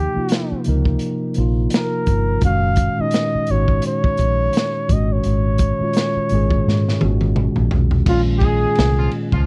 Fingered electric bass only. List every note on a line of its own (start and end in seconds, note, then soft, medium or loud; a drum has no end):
0.16 muted fingered electric bass stroke soft
0.52 muted fingered electric bass stroke soft
0.68 0.96 C#2 medium
1.38 1.66 A#1 medium
2.08 2.36 G1 medium
2.42 2.87 F#1 loud
2.99 muted fingered electric bass stroke soft
3.35 muted fingered electric bass stroke soft
3.50 3.78 G#1 medium
4.20 4.48 A#1 medium
4.90 5.19 G#1 medium
5.26 5.70 G#1 medium
5.81 muted fingered electric bass stroke soft
6.16 muted fingered electric bass stroke soft
6.32 6.60 G#1 medium
6.67 6.95 G#2 medium
7.03 7.47 G#1 medium
7.58 7.70 A#1 medium
7.73 8.01 B1 medium
8.07 8.64 A#1 loud
8.79 9.07 C2 loud
9.33 9.46 C#2 medium